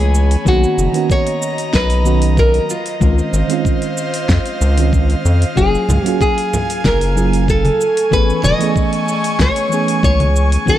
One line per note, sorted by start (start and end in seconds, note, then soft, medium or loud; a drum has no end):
0.00 0.36 C#2 loud
0.00 0.48 E3 medium
0.00 0.43 A3 medium
0.00 0.48 A3 medium
0.00 0.46 B3 medium
0.00 0.47 C#4 medium
0.00 0.29 G#4 medium
0.00 0.48 G#4 loud
0.00 0.43 C#5 medium
0.00 0.43 G#5 medium
0.00 0.43 B5 medium
0.15 cabasa medium
0.31 open hi-hat medium
0.31 cabasa soft
0.45 0.66 B1 loud
0.45 0.90 D#3 medium
0.45 0.90 A#3 medium
0.45 0.90 B3 medium
0.45 0.91 C#4 medium
0.45 0.91 F#4 loud
0.45 1.11 F#4 loud
0.45 5.52 D#5 medium
0.45 2.67 A#5 medium
0.45 kick loud
0.45 cabasa soft
0.64 cabasa soft
0.78 0.88 F#1 loud
0.78 cabasa medium
0.92 2.00 D#3 medium
0.92 2.01 A#3 medium
0.92 2.02 B3 medium
0.92 2.02 C#4 medium
0.92 open hi-hat medium
0.92 cabasa soft
0.97 2.03 F#4 loud
1.10 1.75 C#5 loud
1.10 kick loud
1.10 cabasa soft
1.27 open hi-hat soft
1.42 cabasa medium
1.58 open hi-hat medium
1.58 cabasa soft
1.73 2.60 B1 medium
1.73 2.39 B4 loud
1.73 kick loud
1.73 snare medium
1.73 cabasa soft
1.90 open hi-hat soft
1.90 cabasa soft
2.04 2.67 D#3 medium
2.04 2.67 F#3 medium
2.04 2.68 B3 medium
2.04 2.68 C#4 medium
2.04 2.68 F#4 loud
2.04 cabasa medium
2.22 open hi-hat medium
2.22 cabasa soft
2.37 2.71 A#4 loud
2.37 kick loud
2.37 cabasa soft
2.54 open hi-hat soft
2.70 4.57 F4 medium
2.70 5.54 C5 medium
2.70 7.76 F5 medium
2.70 cabasa medium
2.86 open hi-hat medium
2.86 cabasa soft
3.00 3.21 C#2 loud
3.00 3.45 D#3 medium
3.00 3.46 G#3 medium
3.00 3.46 C4 medium
3.00 3.46 C#4 medium
3.00 3.47 F4 loud
3.00 kick loud
3.00 cabasa medium
3.19 cabasa soft
3.33 3.43 G#1 loud
3.33 cabasa medium
3.48 4.56 D#3 medium
3.48 4.57 G#3 medium
3.48 4.57 C4 medium
3.48 4.58 C#4 medium
3.48 open hi-hat soft
3.48 cabasa soft
3.53 4.59 F4 loud
3.65 kick loud
3.65 cabasa soft
3.82 open hi-hat soft
3.82 cabasa soft
3.98 cabasa medium
4.14 open hi-hat medium
4.14 cabasa soft
4.29 4.39 F2 medium
4.29 kick loud
4.29 snare medium
4.29 cabasa soft
4.46 open hi-hat soft
4.46 cabasa soft
4.61 5.15 C#2 medium
4.61 cabasa medium
4.77 4.89 D#3 medium
4.77 4.89 G#3 medium
4.77 4.90 C4 medium
4.77 4.90 C#4 medium
4.77 4.90 F4 medium
4.77 open hi-hat medium
4.77 cabasa soft
4.93 kick loud
4.93 cabasa soft
5.10 open hi-hat soft
5.25 5.45 F2 medium
5.25 cabasa medium
5.42 open hi-hat medium
5.42 cabasa soft
5.56 5.77 F#1 medium
5.56 6.01 F#3 medium
5.56 6.01 A#3 medium
5.56 6.01 C#4 medium
5.56 6.02 F4 medium
5.56 6.07 G#4 medium
5.56 6.02 G#4 medium
5.56 10.79 G#5 medium
5.56 7.78 G#5 medium
5.56 kick loud
5.56 cabasa soft
5.75 cabasa soft
5.89 5.99 C#2 loud
5.89 high conga medium
5.89 low conga medium
5.89 cabasa medium
6.03 7.12 F#3 medium
6.03 7.12 A#3 medium
6.03 7.13 C#4 medium
6.03 7.13 F4 medium
6.03 6.20 F#4 medium
6.03 open hi-hat soft
6.03 cabasa soft
6.08 7.14 G#4 loud
6.21 6.81 G#4 loud
6.21 kick loud
6.21 cabasa soft
6.38 open hi-hat soft
6.53 low conga medium
6.53 cabasa medium
6.70 open hi-hat soft
6.70 cabasa soft
6.84 7.71 F#1 medium
6.84 7.49 A#4 loud
6.84 kick loud
6.84 snare medium
6.84 high conga medium
6.84 cabasa soft
7.01 open hi-hat soft
7.01 cabasa soft
7.15 7.78 F#3 medium
7.15 7.78 A#3 medium
7.15 7.78 C#4 medium
7.15 7.79 F4 medium
7.15 7.79 G#4 loud
7.15 cabasa medium
7.33 open hi-hat medium
7.33 cabasa soft
7.48 8.13 A4 loud
7.48 kick loud
7.48 cabasa soft
7.65 open hi-hat soft
7.65 high conga medium
7.79 10.64 A3 medium
7.79 10.64 G#5 medium
7.79 10.64 C#6 medium
7.79 cabasa medium
7.97 open hi-hat medium
7.97 cabasa soft
8.11 8.32 A1 loud
8.11 8.56 E3 medium
8.11 8.56 A3 medium
8.11 8.57 B3 medium
8.11 8.57 C#4 medium
8.11 8.57 G#4 loud
8.11 8.44 B4 loud
8.11 kick loud
8.11 cabasa soft
8.30 cabasa soft
8.43 8.54 E1 loud
8.43 9.41 D#5 loud
8.43 high conga medium
8.43 low conga medium
8.43 cabasa medium
8.58 9.67 E3 medium
8.58 9.67 A3 medium
8.58 9.68 B3 medium
8.58 9.69 C#4 medium
8.58 open hi-hat medium
8.58 cabasa soft
8.64 9.69 G#4 loud
8.76 kick loud
8.76 cabasa soft
8.93 open hi-hat soft
9.09 cabasa medium
9.24 open hi-hat medium
9.24 cabasa soft
9.39 9.50 C#2 medium
9.39 10.03 C#5 loud
9.39 kick loud
9.39 snare medium
9.39 high conga medium
9.39 cabasa soft
9.56 open hi-hat soft
9.56 cabasa soft
9.69 10.62 E3 medium
9.69 10.63 A3 medium
9.69 10.64 B3 medium
9.69 10.64 C#4 medium
9.69 cabasa medium
9.74 10.65 G#4 loud
9.88 open hi-hat medium
9.88 cabasa soft
10.03 10.58 C#2 loud
10.03 10.49 C#5 loud
10.03 kick loud
10.03 cabasa soft
10.20 open hi-hat soft
10.20 high conga loud
10.36 cabasa medium
10.52 open hi-hat medium
10.52 cabasa soft
10.66 10.79 B1 medium
10.66 10.79 D#3 medium
10.66 10.79 A#3 medium
10.66 10.79 B3 medium
10.66 10.79 C#4 medium
10.66 10.79 F#4 loud
10.66 10.79 A#4 loud
10.66 10.79 A#5 medium
10.66 10.79 D#6 medium
10.66 kick loud
10.66 cabasa soft